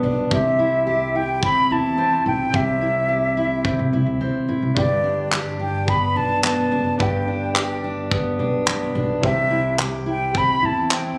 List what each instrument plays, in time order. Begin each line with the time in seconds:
Already playing: steel-string acoustic guitar G2 B3 G4
0.03 upright bass B1, steel-string acoustic guitar D4
0.31 upright bass C2, steel-string acoustic guitar C3 G4, flute E5, kick
0.59 steel-string acoustic guitar E4
0.87 steel-string acoustic guitar G4
1.15 steel-string acoustic guitar E4, flute G5
1.43 steel-string acoustic guitar C4, flute B5, kick
1.71 upright bass E2, steel-string acoustic guitar E4, flute A5
1.98 steel-string acoustic guitar C4
2.26 upright bass B1, steel-string acoustic guitar E4, flute G5
2.53 upright bass C2, steel-string acoustic guitar C3 G4, flute E5, kick
2.81 steel-string acoustic guitar E4
3.09 steel-string acoustic guitar G4
3.37 steel-string acoustic guitar E4
3.64 steel-string acoustic guitar C4, kick
3.79 upright bass C3
3.93 upright bass C2, steel-string acoustic guitar E4
4.06 upright bass D2
4.21 upright bass C2, steel-string acoustic guitar C4
4.48 upright bass B1, steel-string acoustic guitar E4
4.62 upright bass C2
4.75 upright bass G1, steel-string acoustic guitar G2 G4, upright piano D4 B4, flute D5, kick
4.79 upright piano G5
5.04 steel-string acoustic guitar D4
5.32 steel-string acoustic guitar G4, clap
5.60 steel-string acoustic guitar D4, flute G5
5.88 steel-string acoustic guitar B3, flute B5, kick
6.16 upright bass B1, steel-string acoustic guitar D4, flute A5
6.44 steel-string acoustic guitar B3, flute A5, clap
6.71 upright bass F#1, steel-string acoustic guitar D4
6.98 upright bass G1, steel-string acoustic guitar G2 G4, upright piano D4 B4 G5, flute G5, kick
7.28 steel-string acoustic guitar D4
7.55 steel-string acoustic guitar G4, clap
7.84 steel-string acoustic guitar D4
8.11 steel-string acoustic guitar B3, kick
8.39 upright bass B1, steel-string acoustic guitar D4
8.67 steel-string acoustic guitar B3, clap
8.95 upright bass B1, steel-string acoustic guitar D4
9.21 upright bass C2, steel-string acoustic guitar C3 G4, upright piano E4 C5, flute E5, kick
9.26 upright piano G5
9.51 steel-string acoustic guitar E4
9.78 steel-string acoustic guitar G4, clap
10.06 steel-string acoustic guitar E4, flute G5
10.34 steel-string acoustic guitar C4, flute B5, kick
10.62 upright bass E2, steel-string acoustic guitar E4, flute A5
10.91 steel-string acoustic guitar C4, flute G5, clap